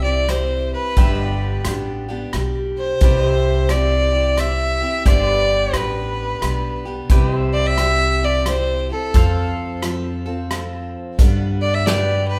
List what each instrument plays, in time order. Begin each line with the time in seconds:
Already playing: upright bass C2, pedal steel guitar C4 G4 E5
0.03 steel-string acoustic guitar C4 E4 G4, fiddle D5
0.27 steel-string acoustic guitar G3 C4 E4 G4, fiddle C5, cross-stick, closed hi-hat
0.74 fiddle B4
0.96 upright bass G1, steel-string acoustic guitar G2 D3 G3 B3 D4 G4, pedal steel guitar G4, kick, closed hi-hat
1.01 pedal steel guitar E5
1.26 pedal steel guitar D5
1.64 upright bass A1, steel-string acoustic guitar G3 B3 D4 G4, cross-stick, closed hi-hat
2.08 steel-string acoustic guitar G3 B3 D4 G4
2.33 upright bass B1, steel-string acoustic guitar G3 D4 G4, cross-stick, closed hi-hat
2.78 fiddle C5
3.00 upright bass C2, steel-string acoustic guitar C3 G3 C4 E4 G4, pedal steel guitar G4 B4, kick, closed hi-hat
3.05 pedal steel guitar D5
3.24 pedal steel guitar C5
3.30 pedal steel guitar E5
3.69 steel-string acoustic guitar G3 C4 E4 G4, fiddle D5, cross-stick, closed hi-hat
4.13 steel-string acoustic guitar C4 E4 G4
4.37 steel-string acoustic guitar G3 C4 E4 G4, fiddle E5, cross-stick, closed hi-hat
4.81 steel-string acoustic guitar C4 E4 G4
5.06 upright bass G1, steel-string acoustic guitar G2 D3 G3 B3 D4 G4, pedal steel guitar G4 C5 D5, fiddle D5, kick, closed hi-hat
5.28 pedal steel guitar B4
5.73 upright bass A1, steel-string acoustic guitar G3 B3 D4 G4, fiddle B4, cross-stick, closed hi-hat
6.42 upright bass B1, steel-string acoustic guitar G3 B3 D4 G4, cross-stick, closed hi-hat
6.85 steel-string acoustic guitar G3 B3 D4 G4
7.09 upright bass C2, steel-string acoustic guitar C3 G3 C4 E4 G4, pedal steel guitar G4 B4 D5, kick, closed hi-hat
7.32 pedal steel guitar C5
7.37 pedal steel guitar E5
7.53 fiddle D5
7.67 fiddle E5
7.78 steel-string acoustic guitar G3 C4 E4 G4, cross-stick, closed hi-hat
8.21 steel-string acoustic guitar C4 E4 G4, fiddle D5
8.46 steel-string acoustic guitar G3 C4 E4 G4, fiddle C5, cross-stick, closed hi-hat
8.89 steel-string acoustic guitar C4 E4 G4, fiddle A4
9.14 upright bass F2, steel-string acoustic guitar F3 C4 F4 A4, pedal steel guitar A4 C5 F5, kick, closed hi-hat
9.82 steel-string acoustic guitar F3 C4 F4 A4, cross-stick, closed hi-hat
10.26 steel-string acoustic guitar C4 F4 A4
10.51 steel-string acoustic guitar F3 C4 F4 A4, cross-stick, closed hi-hat
11.19 steel-string acoustic guitar G2 D3 G3 B3 D4 B4, upright bass G2, kick, closed hi-hat
11.62 fiddle D5
11.74 fiddle E5
11.86 steel-string acoustic guitar G3 B3 D4 B4, pedal steel guitar G4 B4, fiddle D5, snare, closed hi-hat
11.90 pedal steel guitar D5
12.28 fiddle B4